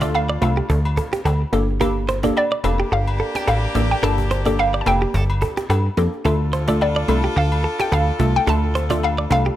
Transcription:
Already playing: D2 A3 D4 F4 A5, downlifter
0.01 A3 D4 F4 A4 D5, cajon bass, cajon slap
0.14 F5, cajon slap, high agogo, low woodblock
0.29 D5
0.41 C2 A3 D4 F4 A4 F5, cajon slap, high agogo
0.57 G4, cajon slap
0.70 D2 A4, cajon bass
0.85 high agogo
0.97 A4, cajon bass
1.13 G4, cajon slap
1.25 D2 A4, cajon slap, high agogo, low woodblock
1.53 G1 A#3 D4 G4 A4, cajon slap
1.68 cajon slap
1.80 A#3 D4 G4 A4 A#4, cajon bass, high agogo
2.09 C5, cajon slap
2.23 A#3 D4 G4 A4 D5, cajon bass, cajon slap
2.36 D5, cajon slap, high agogo, low woodblock
2.52 D5
2.64 F1 A#3 D4 G4 A4, cajon slap, high agogo
2.79 G4, cajon slap
2.92 G1 A4 F5, cajon slap
3.08 high agogo
3.20 A4, cajon slap
3.35 G4 G5, cajon slap
3.47 A1 A4 F5, cajon slap, high agogo, low woodblock
3.75 A1 A#3 D4 G4 A4, cajon bass, cajon slap
3.90 G5, cajon slap
4.03 G1 A#3 D4 G4 A4 A#4 A5, cajon bass, high agogo
4.18 cajon bass
4.31 C5, cajon slap
4.45 A#3 D4 G4 A4 D5, cajon bass, cajon slap
4.59 F5, cajon slap, high agogo, low woodblock
4.74 D5
4.81 A5
4.86 F1 A#3 D4 G4 A4 G5, cajon slap, high agogo
5.01 G4, cajon slap
5.14 G1 A4, cajon bass
5.30 high agogo
5.42 A4, cajon bass
5.57 G4, cajon slap
5.70 G2 A4, cajon slap, high agogo, low woodblock
5.97 F2 A#3 D4 G4 A4, cajon slap
6.12 cajon slap
6.25 D2 A3 D4 F4 A4, cajon bass, high agogo
6.53 C5, cajon slap
6.68 A3 D4 F4 A4 D5, cajon bass, cajon slap
6.81 D5, cajon slap, high agogo, low woodblock
6.96 D5
7.08 C2 A3 D4 F4 A4, cajon slap, high agogo
7.24 G4, cajon slap
7.36 D2 A4 F5, cajon slap
7.52 high agogo
7.64 A4, cajon slap
7.80 G4 G5, cajon slap
7.92 D2 A4 F5, cajon slap, high agogo, low woodblock
8.19 C2 A3 D4 F4 A4, cajon bass, cajon slap
8.35 G5, cajon slap
8.47 D2 A3 D4 F4 A4 A5, cajon bass, high agogo
8.75 C5, cajon slap
8.90 A3 D4 F4 A4 D5, cajon bass, cajon slap
9.03 F5, cajon slap, high agogo, low woodblock
9.18 D5
9.30 C2 A3 D4 F4 A4 F5, cajon slap, high agogo
9.46 G4, cajon slap

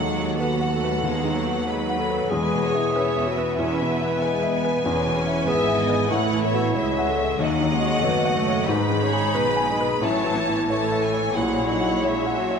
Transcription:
Already playing: D#2 D#3 G#3 A4 F#5
0.07 F#3
0.18 F#4
0.39 F#3 B3 F#4 B4 F#5
0.61 F#5
0.73 A3
0.84 B4
1.03 D#2 G#3 B3 D#4
1.25 D#3
1.36 F#3
1.47 F#4
1.67 F#3 G#3 B4 B5
1.90 F#5
1.99 F#3 A4
2.10 B4
2.30 E1 E2 G#3 G#4 B4 G#5
2.54 B2
2.63 B3 C#5
2.75 E4
2.95 B3 C#4 B4 C#5 E5
3.17 E5
3.27 F#4 B4
3.38 B4
3.57 E2 B3 C#4 E4 E5
3.81 B2
3.89 B3
4.01 E4
4.22 G#3 B4 G#5
4.43 E5
4.52 G#5
4.65 B4
4.84 E1 E2 G#3 C#4 B4
5.06 B2
5.15 C#4
5.27 E4
5.47 G#1 G#2 B3 G#4 B4 E5
5.67 E5
5.79 D#5
5.89 B4
6.10 A1 A2 A3 E4 C#5 F#5
6.32 E3
6.44 B3 E5
6.54 F#4
6.75 C#2 G#3 C#4 C#5 E5
6.99 F#5
7.08 A4
7.18 C#5
7.39 D#2 F#3 D#4 D#5 F#5
7.60 D#3
7.71 G#3 C#4
7.82 F#4
8.03 F#1 F#2 A3 B3 F#4 C#5
8.25 F#5
8.36 A3
8.47 C#5
8.68 G#1 G#2 G#3 D#4 B4 B5
8.90 D#3
9.02 C#4 C#5
9.13 G#4
9.34 B1 B2 B3 B4
9.39 B4
9.57 G#5
9.70 D#4 G#4 B4
9.81 B4
10.02 A1 A2 F#3 C#4 C#5 A5
10.25 E3
10.36 E3 B3
10.48 E4
10.69 E3 A3 A4 C#5 A5
10.92 E5
11.03 G#5
11.14 C#5
11.35 A#1 A#2 F#3 C#4 E4 C#5 F#5
11.60 A#2
11.69 D#4 F#5
11.80 F#4
12.03 G#3 C#4 C#5 E5
12.26 F#5
12.38 F#3 F#4
12.51 C#5

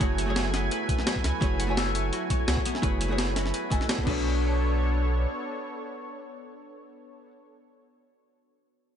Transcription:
Already playing: F#3 A3 B3 E4 A4 B4 C#5 F#5 G#5 B5
0.00 F#1 A3 E4 F#4 G#4 C#5, kick, closed hi-hat
0.18 C#5, closed hi-hat
0.26 A3 E4 F#4 G#4
0.30 C#5
0.36 F#5, snare, closed hi-hat
0.54 B3, snare, closed hi-hat
0.71 B4, closed hi-hat
0.89 B4, kick, closed hi-hat
0.99 snare
1.07 B5, snare, closed hi-hat
1.16 kick
1.24 C#2 F#4, snare, closed hi-hat
1.41 F#1 A3 E4 F#4 G#4 B4 C#5, kick, closed hi-hat
1.60 F#5, closed hi-hat
1.67 A3 E4 F#4 G#5
1.71 C#5
1.77 A4, snare, closed hi-hat
1.95 C#5, closed hi-hat
2.13 F#4, closed hi-hat
2.30 C#5, kick, closed hi-hat
2.48 C#2 F#5, snare, closed hi-hat
2.57 kick
2.66 B3, closed hi-hat
2.75 snare
2.82 F#1 A3 E4 F#4 G#4 B4 C#5, kick, closed hi-hat
3.01 B4, closed hi-hat
3.08 A3 E4 F#4 G#4
3.12 C#5
3.18 B5, snare, closed hi-hat
3.36 F#4, snare, closed hi-hat
3.46 snare
3.54 B4, closed hi-hat
3.70 F#1 A3 E4 F#4 A4 D#5 G#5, kick, closed hi-hat
3.81 snare
3.89 B4, snare, closed hi-hat
3.99 kick
4.03 B1 B3 D4 F#4 A4 B4 C#5, kick, crash
4.08 A4 C#5

